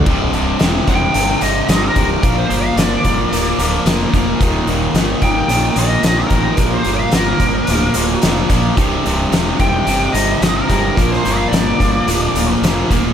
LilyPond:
<<
  \new Staff \with { instrumentName = "Lead electric guitar" } { \time 4/4 \key bes \lydian \tempo 4 = 110 r4. g''4 ees''8 ees''16 bes'8.~ | bes'16 c''8 f''16 d''2 r4 | r4. g''4 ees''8 ees''16 bes'8.~ | bes'16 c''8 f''16 bes'2 r4 |
r4. g''4 ees''8 ees''16 bes'8.~ | bes'16 c''8 f''16 d''2 r4 | }
  \new Staff \with { instrumentName = "Distorted electric guitar" } { \clef bass \time 4/4 \key bes \lydian <c, g, c>8 <c, g, c>8 <c, g, c>8 <c, g, c>8 <c, g, c>8 <c, g, c>8 <c, g, c>8 <c, g, c>8 | <bes, f bes>8 <bes, f bes>8 <bes, f bes>8 <bes, f bes>8 <bes, f bes>8 <bes, f bes>8 <bes, f bes>8 <bes, f bes>8 | <ees, bes, ees>8 <ees, bes, ees>8 <ees, bes, ees>8 <ees, bes, ees>8 <ees, bes, ees>8 <ees, bes, ees>8 <ees, bes, ees>8 <ees, bes, ees>8 | <bes, f bes>8 <bes, f bes>8 <bes, f bes>8 <bes, f bes>8 <bes, f bes>8 <bes, f bes>8 <bes, f bes>8 <bes, f bes>8 |
<c, g, c>8 <c, g, c>8 <c, g, c>8 <c, g, c>8 <c, g, c>8 <c, g, c>8 <c, g, c>8 <c, g, c>8 | <bes, f bes>8 <bes, f bes>8 <bes, f bes>8 <bes, f bes>8 <bes, f bes>8 <bes, f bes>8 <bes, f bes>8 <bes, f bes>8 | }
  \new Staff \with { instrumentName = "Fingered electric bass" } { \clef bass \time 4/4 \key bes \lydian c,,8 c,,8 e,,8 e,,8 g,,8 g,,8 g,,8 c,,8 | bes,,8 g,,8 g,,8 g,,8 d,,8 d,,8 f,,8 f,,8 | ees,,8 ees,,8 g,,8 g,,8 bes,,8 bes,,8 bes,,8 a,,8 | bes,,8 g,,8 g,,8 g,,8 d,,8 d,,8 f,,8 bes,,8 |
c,,8 c,,8 e,,8 e,,8 g,,8 g,,8 g,,8 g,,8 | bes,,8 g,,8 g,,8 g,,8 d,,8 d,,8 f,,8 d,,8 | }
  \new DrumStaff \with { instrumentName = "Drums" } \drummode { \time 4/4 <cymc bd>8 hh8 <hh sn>8 <hh bd>8 hh8 hh8 <hh sn>8 <hh bd>8 | <hh bd>8 hh8 <hh sn>8 <hh bd>8 hh8 hh8 <hh sn>8 <hh bd>8 | <hh bd>8 hh8 <hh sn>8 <hh bd>8 hh8 hh8 <hh sn>8 <hh bd>8 | <hh bd>8 hh8 <hh sn>8 <hh bd>8 hh8 hh8 <hh sn>8 <hh bd>8 |
<hh bd>8 hh8 <hh sn>8 <hh bd>8 hh8 hh8 <hh sn>8 <hh bd>8 | <hh bd>16 sn16 hh8 <hh sn>8 <hh bd>8 hh8 hh8 <hh sn>8 <hh bd>8 | }
>>